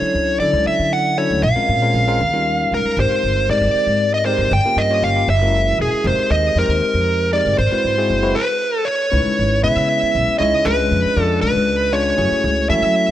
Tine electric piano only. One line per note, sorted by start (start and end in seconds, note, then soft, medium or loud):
0.00 0.38 F#3 medium
0.00 0.38 C#4 medium
0.00 0.39 D4 medium
0.00 0.38 E4 medium
0.00 0.38 A4 medium
0.42 1.14 F#3 medium
0.42 1.14 C#4 medium
0.42 1.14 D4 medium
0.42 1.14 E4 medium
0.42 1.14 A4 medium
1.18 1.44 F#3 medium
1.18 1.44 C#4 medium
1.18 1.44 D4 medium
1.18 1.44 E4 medium
1.18 1.44 A4 medium
1.56 1.81 G#3 medium
1.56 1.80 C4 medium
1.56 1.80 C#4 medium
1.56 1.80 F4 medium
1.56 1.80 A#4 medium
1.82 2.06 G#3 medium
1.82 2.06 C4 medium
1.82 2.06 C#4 medium
1.82 2.06 F4 medium
1.82 2.06 A#4 medium
2.08 2.20 G#3 medium
2.08 2.20 C4 medium
2.08 2.20 C#4 medium
2.08 2.20 F4 medium
2.08 2.21 A#4 medium
2.33 2.94 G3 medium
2.33 2.94 C#4 medium
2.33 2.94 D#4 medium
2.33 2.94 F4 medium
2.33 2.94 A#4 medium
2.98 3.46 G#3 medium
2.98 3.46 C4 soft
2.98 3.46 D#4 medium
2.98 3.46 G4 medium
2.98 3.46 A#4 medium
3.49 4.21 G#3 medium
3.49 4.22 C4 medium
3.49 4.22 D#4 medium
3.49 4.21 G4 medium
3.49 4.21 A#4 medium
4.26 4.52 G#3 medium
4.26 4.52 C4 medium
4.26 4.52 D#4 medium
4.26 4.52 G4 medium
4.26 4.52 A#4 medium
4.65 4.89 A#3 medium
4.65 4.89 C#4 medium
4.65 4.89 F4 medium
4.65 4.89 G4 medium
4.65 4.89 A#4 medium
4.91 5.14 A#3 medium
4.91 5.14 C#4 medium
4.91 5.14 F4 medium
4.91 5.14 G4 medium
4.91 5.14 C#5 medium
5.16 5.29 A#3 medium
5.16 5.29 C#4 medium
5.16 5.29 F4 medium
5.16 5.28 G4 medium
5.16 5.29 A#4 medium
5.42 6.02 G#3 medium
5.42 6.02 C#4 medium
5.42 6.02 E4 medium
5.42 6.02 F#4 medium
5.42 6.02 A#4 medium
6.06 6.54 G#3 medium
6.06 6.54 C4 medium
6.06 6.54 D#4 medium
6.06 6.54 G4 medium
6.06 6.54 A#4 medium
6.57 7.29 G#3 medium
6.57 7.29 C4 medium
6.57 7.29 D#4 medium
6.57 7.29 G4 medium
6.57 7.29 C5 medium
7.33 7.59 G#3 medium
7.33 7.59 C4 medium
7.33 7.59 D#4 medium
7.33 7.59 G4 medium
7.33 7.59 A#4 medium
7.72 7.96 G#3 medium
7.72 7.96 C4 medium
7.72 7.96 E4 medium
7.72 7.96 F#4 medium
7.72 7.96 B4 medium
7.98 8.21 G#3 medium
7.98 8.21 C4 medium
7.98 8.22 E4 medium
7.98 8.22 F#4 medium
7.98 8.22 G#4 medium
8.22 8.35 G#3 medium
8.22 8.35 C4 medium
8.22 8.36 E4 medium
8.22 8.36 F#4 medium
8.22 8.36 B4 medium
9.12 9.60 G#3 medium
9.12 9.60 C#4 medium
9.12 9.60 D#4 medium
9.12 9.60 E4 medium
9.12 9.60 B4 medium
9.63 10.35 G#3 medium
9.63 10.36 B3 medium
9.63 10.36 C#4 medium
9.63 10.36 E4 medium
9.63 10.35 B4 medium
10.40 10.64 G#3 medium
10.40 10.64 C#4 medium
10.40 10.64 D#4 medium
10.40 10.64 E4 medium
10.40 10.64 C#5 medium
10.65 11.14 G#3 medium
10.65 11.13 C#4 medium
10.65 11.14 D4 medium
10.65 11.14 F4 medium
10.65 11.14 B4 medium
11.17 11.89 G#3 medium
11.17 11.89 C#4 medium
11.17 11.89 D4 medium
11.17 11.89 F4 medium
11.17 11.89 D5 medium
11.92 12.17 G#3 medium
11.92 12.17 C#4 medium
11.92 12.17 D4 medium
11.92 12.17 F4 medium
11.92 12.17 C#5 medium
12.17 12.66 A3 medium
12.17 12.66 C#4 medium
12.17 12.66 E4 medium
12.17 12.66 F#4 medium
12.17 12.66 G#4 medium
12.69 13.11 A3 medium
12.69 13.11 C#4 medium
12.69 13.11 E4 medium
12.69 13.11 F#4 medium
12.69 13.11 A4 medium